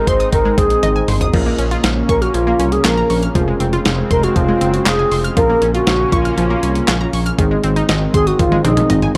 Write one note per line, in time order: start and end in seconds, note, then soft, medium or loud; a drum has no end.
0.00 1.30 G#3 medium
0.00 1.32 G#3 medium
0.00 1.30 C4 medium
0.00 1.32 C4 medium
0.00 1.30 D#4 medium
0.00 1.32 D#4 medium
0.00 1.30 G#4 medium
0.07 0.25 G#1 loud
0.07 0.32 C5 loud
0.07 0.14 C6 loud
0.07 kick medium
0.07 closed hi-hat medium
0.20 0.27 D#6 medium
0.20 closed hi-hat medium
0.32 0.50 G#1 loud
0.32 0.39 D#3 medium
0.32 0.60 A#4 loud
0.32 kick medium
0.32 closed hi-hat medium
0.45 0.52 G#3 medium
0.58 0.75 A#1 loud
0.58 0.65 C4 medium
0.58 1.08 G#4 loud
0.58 kick loud
0.58 closed hi-hat medium
0.70 closed hi-hat medium
0.83 1.01 G#1 loud
0.83 0.90 D#5 loud
0.83 closed hi-hat medium
0.83 high tom medium
0.96 1.02 G#5 medium
1.08 1.26 G#1 loud
1.08 1.15 C6 medium
1.08 mid tom loud
1.08 open hi-hat medium
1.21 1.28 D#6 loud
1.21 closed hi-hat medium
1.21 floor tom loud
1.33 1.51 A#1 loud
1.33 7.35 C#3 medium
1.33 1.40 F3 medium
1.33 2.82 A#3 medium
1.33 3.33 A#3 medium
1.33 2.82 C#4 medium
1.33 3.33 C#4 medium
1.33 2.82 F4 medium
1.33 2.82 A#4 medium
1.33 kick loud
1.33 crash medium
1.46 1.53 A#3 medium
1.58 1.76 A#1 loud
1.58 1.66 C#4 medium
1.58 closed hi-hat medium
1.71 1.78 F4 loud
1.71 closed hi-hat medium
1.84 2.02 A#1 loud
1.84 1.91 F5 medium
1.84 snare loud
1.84 closed hi-hat medium
2.09 2.27 A#1 loud
2.09 2.23 A#4 loud
2.09 2.16 C#6 loud
2.09 kick medium
2.09 closed hi-hat medium
2.22 2.36 F#4 loud
2.22 2.29 F6 medium
2.22 closed hi-hat medium
2.34 2.52 A#1 loud
2.34 2.41 F3 medium
2.34 2.74 F4 loud
2.34 closed hi-hat medium
2.47 2.54 A#3 medium
2.59 2.77 C2 medium
2.59 2.66 C#4 medium
2.59 closed hi-hat medium
2.72 2.86 G#4 loud
2.72 closed hi-hat medium
2.85 3.02 A#1 loud
2.85 3.35 A#3 medium
2.85 3.35 C#4 soft
2.85 3.34 F4 soft
2.85 3.23 A#4 loud
2.85 3.35 A#4 medium
2.85 2.92 F5 loud
2.85 snare loud
2.85 clap loud
2.85 closed hi-hat medium
2.97 3.04 A#5 medium
3.10 3.28 A#1 loud
3.10 3.17 C#6 medium
3.10 open hi-hat medium
3.23 3.29 F6 loud
3.23 closed hi-hat medium
3.35 3.53 F1 loud
3.35 3.42 F3 medium
3.35 5.33 G#3 medium
3.35 5.35 G#3 medium
3.35 5.33 C4 medium
3.35 5.35 C4 medium
3.35 5.33 F4 medium
3.35 5.33 G#4 medium
3.35 kick loud
3.35 closed hi-hat medium
3.48 3.54 G#3 medium
3.60 3.78 F1 medium
3.60 3.67 C4 medium
3.60 closed hi-hat medium
3.73 3.80 F4 loud
3.73 closed hi-hat medium
3.85 4.03 F1 loud
3.85 3.92 F5 medium
3.85 snare loud
3.85 closed hi-hat medium
4.11 4.28 F1 loud
4.11 4.25 A#4 loud
4.11 4.17 C6 loud
4.11 kick medium
4.11 closed hi-hat medium
4.23 4.38 F#4 loud
4.23 4.30 F6 medium
4.23 closed hi-hat medium
4.36 4.54 F1 loud
4.36 4.43 F3 medium
4.36 4.75 F4 loud
4.36 kick loud
4.36 closed hi-hat medium
4.48 4.55 G#3 medium
4.61 4.79 F#1 loud
4.61 4.68 C4 medium
4.61 closed hi-hat medium
4.74 4.88 F#4 loud
4.74 closed hi-hat medium
4.86 5.04 F1 loud
4.86 5.24 G#4 loud
4.86 4.93 F5 loud
4.86 snare loud
4.86 clap loud
4.86 closed hi-hat medium
4.99 5.06 G#5 medium
5.12 5.29 F1 loud
5.12 5.18 C6 medium
5.12 open hi-hat medium
5.24 5.31 F6 loud
5.24 closed hi-hat medium
5.37 5.55 A#1 loud
5.37 5.44 F3 medium
5.37 7.35 A#3 medium
5.37 7.37 A#3 medium
5.37 7.35 C#4 medium
5.37 7.37 C#4 medium
5.37 5.72 A#4 loud
5.37 7.35 A#4 medium
5.37 7.35 F5 medium
5.37 kick loud
5.37 closed hi-hat medium
5.50 5.56 A#3 medium
5.62 5.80 A#1 loud
5.62 5.69 C#4 medium
5.62 closed hi-hat medium
5.75 5.81 F4 loud
5.75 6.14 F#4 loud
5.75 closed hi-hat medium
5.87 6.05 A#1 loud
5.87 5.94 F5 medium
5.87 snare loud
5.87 closed hi-hat medium
6.12 6.30 A#1 loud
6.12 6.37 F4 medium
6.12 6.19 C#6 loud
6.12 kick medium
6.12 closed hi-hat medium
6.25 6.32 F6 medium
6.25 closed hi-hat medium
6.37 6.55 A#1 loud
6.37 6.44 F3 medium
6.37 7.09 F4 medium
6.37 closed hi-hat medium
6.50 6.57 A#3 medium
6.63 6.81 C2 medium
6.63 6.70 C#4 medium
6.63 closed hi-hat medium
6.75 closed hi-hat medium
6.88 7.06 A#1 loud
6.88 6.95 F5 loud
6.88 snare loud
6.88 clap loud
6.88 closed hi-hat medium
7.01 7.07 A#5 medium
7.13 7.31 A#1 loud
7.13 7.20 C#6 medium
7.13 open hi-hat medium
7.26 7.33 F6 loud
7.26 closed hi-hat medium
7.38 7.56 G#1 loud
7.38 7.45 D#3 medium
7.38 9.17 D#3 medium
7.38 8.87 G#3 medium
7.38 9.17 G#3 medium
7.38 8.87 C4 medium
7.38 9.17 C4 medium
7.38 8.87 D#4 medium
7.38 8.87 G#4 medium
7.38 kick loud
7.38 closed hi-hat medium
7.51 7.58 G#3 medium
7.64 7.81 G#1 loud
7.64 7.71 C4 medium
7.64 closed hi-hat medium
7.76 7.83 D#4 loud
7.76 closed hi-hat medium
7.89 8.07 G#1 loud
7.89 7.96 D#5 medium
7.89 snare loud
7.89 closed hi-hat medium
8.14 8.32 G#1 loud
8.14 8.28 G#4 loud
8.14 8.21 C6 loud
8.14 kick medium
8.14 closed hi-hat medium
8.27 8.41 F#4 loud
8.27 8.34 D#6 medium
8.27 closed hi-hat medium
8.39 8.57 G#1 loud
8.39 8.46 D#3 medium
8.39 8.64 F4 loud
8.39 kick loud
8.39 closed hi-hat medium
8.39 high tom medium
8.52 8.59 G#3 medium
8.52 high tom medium
8.65 8.82 A#1 loud
8.65 8.71 C4 medium
8.65 9.12 D#4 medium
8.65 closed hi-hat medium
8.65 mid tom medium
8.77 closed hi-hat medium
8.77 mid tom medium
8.90 9.08 G#1 loud
8.90 9.17 G#3 medium
8.90 9.17 C4 soft
8.90 9.17 D#4 soft
8.90 9.17 G#4 medium
8.90 8.97 D#5 loud
8.90 closed hi-hat medium
8.90 mid tom loud
9.02 9.09 G#5 medium
9.02 mid tom medium